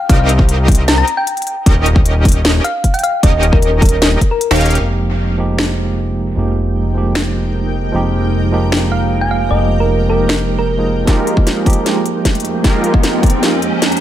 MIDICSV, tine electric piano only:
0, 0, Header, 1, 2, 480
1, 0, Start_track
1, 0, Key_signature, -4, "minor"
1, 0, Tempo, 392157
1, 116, Time_signature, 4, 2, 24, 8
1, 17141, End_track
2, 0, Start_track
2, 0, Title_t, "Tine electric piano"
2, 0, Program_c, 0, 4
2, 5850, Note_on_c, 0, 53, 86
2, 5863, Note_on_c, 0, 56, 78
2, 5874, Note_on_c, 0, 58, 80
2, 5887, Note_on_c, 0, 63, 81
2, 5898, Note_on_c, 0, 67, 94
2, 6084, Control_c, 0, 64, 127
2, 6555, Note_off_c, 0, 53, 0
2, 6561, Note_off_c, 0, 56, 0
2, 6567, Note_off_c, 0, 58, 0
2, 6573, Note_off_c, 0, 63, 0
2, 6579, Note_off_c, 0, 67, 0
2, 6582, Note_on_c, 0, 53, 85
2, 6589, Note_on_c, 0, 56, 76
2, 6595, Note_on_c, 0, 58, 77
2, 6601, Note_on_c, 0, 63, 73
2, 6607, Note_on_c, 0, 67, 92
2, 6700, Note_off_c, 0, 53, 0
2, 6704, Note_off_c, 0, 56, 0
2, 6707, Note_off_c, 0, 58, 0
2, 6709, Note_off_c, 0, 63, 0
2, 6712, Note_off_c, 0, 67, 0
2, 7769, Note_on_c, 0, 53, 67
2, 7782, Note_on_c, 0, 56, 62
2, 7795, Note_on_c, 0, 58, 61
2, 7806, Note_on_c, 0, 63, 59
2, 7818, Note_on_c, 0, 67, 74
2, 8474, Note_off_c, 0, 53, 0
2, 8481, Note_off_c, 0, 56, 0
2, 8487, Note_off_c, 0, 58, 0
2, 8491, Note_on_c, 0, 53, 75
2, 8493, Note_off_c, 0, 63, 0
2, 8499, Note_off_c, 0, 67, 0
2, 8502, Note_on_c, 0, 56, 66
2, 8515, Note_on_c, 0, 58, 69
2, 8527, Note_on_c, 0, 63, 68
2, 8539, Note_on_c, 0, 67, 84
2, 9675, Note_off_c, 0, 53, 0
2, 9681, Note_off_c, 0, 56, 0
2, 9687, Note_off_c, 0, 58, 0
2, 9689, Note_on_c, 0, 53, 90
2, 9693, Note_off_c, 0, 63, 0
2, 9699, Note_off_c, 0, 67, 0
2, 9702, Note_on_c, 0, 56, 84
2, 9714, Note_on_c, 0, 58, 83
2, 9726, Note_on_c, 0, 63, 81
2, 9739, Note_on_c, 0, 67, 98
2, 10394, Note_off_c, 0, 53, 0
2, 10401, Note_off_c, 0, 56, 0
2, 10406, Note_off_c, 0, 58, 0
2, 10413, Note_off_c, 0, 63, 0
2, 10419, Note_off_c, 0, 67, 0
2, 10426, Note_on_c, 0, 53, 87
2, 10431, Note_on_c, 0, 56, 79
2, 10438, Note_on_c, 0, 58, 82
2, 10443, Note_on_c, 0, 63, 79
2, 10450, Note_on_c, 0, 67, 95
2, 10542, Note_off_c, 0, 53, 0
2, 10545, Note_off_c, 0, 56, 0
2, 10548, Note_off_c, 0, 58, 0
2, 10551, Note_off_c, 0, 63, 0
2, 10554, Note_off_c, 0, 67, 0
2, 11612, Note_on_c, 0, 53, 69
2, 11625, Note_on_c, 0, 56, 63
2, 11636, Note_on_c, 0, 58, 63
2, 11648, Note_on_c, 0, 63, 64
2, 11661, Note_on_c, 0, 67, 80
2, 12315, Note_off_c, 0, 53, 0
2, 12322, Note_off_c, 0, 56, 0
2, 12327, Note_off_c, 0, 58, 0
2, 12330, Note_on_c, 0, 53, 76
2, 12334, Note_off_c, 0, 63, 0
2, 12340, Note_off_c, 0, 67, 0
2, 12342, Note_on_c, 0, 56, 71
2, 12356, Note_on_c, 0, 58, 72
2, 12367, Note_on_c, 0, 63, 71
2, 12380, Note_on_c, 0, 67, 85
2, 13160, Note_off_c, 0, 53, 0
2, 13166, Note_off_c, 0, 56, 0
2, 13173, Note_off_c, 0, 58, 0
2, 13179, Note_off_c, 0, 63, 0
2, 13185, Note_off_c, 0, 67, 0
2, 13187, Note_on_c, 0, 53, 79
2, 13192, Note_on_c, 0, 56, 75
2, 13199, Note_on_c, 0, 58, 71
2, 13204, Note_on_c, 0, 63, 73
2, 13211, Note_on_c, 0, 68, 87
2, 13516, Note_off_c, 0, 53, 0
2, 13525, Note_off_c, 0, 56, 0
2, 13528, Note_off_c, 0, 58, 0
2, 13531, Note_off_c, 0, 63, 0
2, 13531, Note_on_c, 0, 53, 89
2, 13534, Note_off_c, 0, 68, 0
2, 13543, Note_on_c, 0, 56, 83
2, 13556, Note_on_c, 0, 58, 83
2, 13567, Note_on_c, 0, 63, 79
2, 13573, Control_c, 0, 64, 0
2, 13580, Note_on_c, 0, 67, 98
2, 13813, Control_c, 0, 64, 127
2, 14235, Note_off_c, 0, 53, 0
2, 14241, Note_off_c, 0, 56, 0
2, 14247, Note_off_c, 0, 58, 0
2, 14253, Note_off_c, 0, 63, 0
2, 14259, Note_off_c, 0, 67, 0
2, 14264, Note_on_c, 0, 53, 87
2, 14270, Note_on_c, 0, 56, 81
2, 14277, Note_on_c, 0, 58, 80
2, 14283, Note_on_c, 0, 63, 81
2, 14288, Note_on_c, 0, 67, 94
2, 14381, Note_off_c, 0, 53, 0
2, 14384, Note_off_c, 0, 56, 0
2, 14388, Note_off_c, 0, 58, 0
2, 14390, Note_off_c, 0, 63, 0
2, 14393, Note_off_c, 0, 67, 0
2, 15453, Note_on_c, 0, 53, 73
2, 15464, Note_on_c, 0, 56, 65
2, 15476, Note_on_c, 0, 58, 66
2, 15488, Note_on_c, 0, 63, 65
2, 15500, Note_on_c, 0, 67, 79
2, 16156, Note_off_c, 0, 53, 0
2, 16161, Note_off_c, 0, 56, 0
2, 16168, Note_off_c, 0, 58, 0
2, 16172, Note_on_c, 0, 53, 80
2, 16174, Note_off_c, 0, 63, 0
2, 16180, Note_off_c, 0, 67, 0
2, 16185, Note_on_c, 0, 56, 75
2, 16197, Note_on_c, 0, 58, 73
2, 16208, Note_on_c, 0, 63, 71
2, 16220, Note_on_c, 0, 67, 90
2, 17141, Note_off_c, 0, 53, 0
2, 17141, Note_off_c, 0, 56, 0
2, 17141, Note_off_c, 0, 58, 0
2, 17141, Note_off_c, 0, 63, 0
2, 17141, Note_off_c, 0, 67, 0
2, 17141, End_track
0, 0, End_of_file